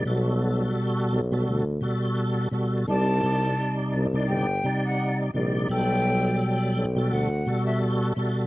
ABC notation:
X:1
M:4/4
L:1/16
Q:"Swing 16ths" 1/4=85
K:G
V:1 name="Flute"
z16 | a4- a z3 g3 f2 z3 | g4- g z3 f3 e z4 |]
V:2 name="Tonewheel organ" clef=bass
[B,,G,FA]6 z [B,,G,FA]2 z [B,,G,FA]4 [B,,G,FA]2 | [C,G,_Ed]2 [C,G,Ed]4- [C,G,Ed] [C,G,Ed]2 z [C,G,Ed]4 [C,G,Ed]2 | [B,,F,G,A]6 z [B,,G,FA]2 z [B,,G,FA]4 [B,,G,FA]2 |]
V:3 name="Tuba" clef=bass
B,,,4 z2 B,,,2 D,,2 z6 | C,,4 z2 C,,2 G,,,2 z4 _B,,,2 | B,,,4 z2 B,,,2 D,,2 z6 |]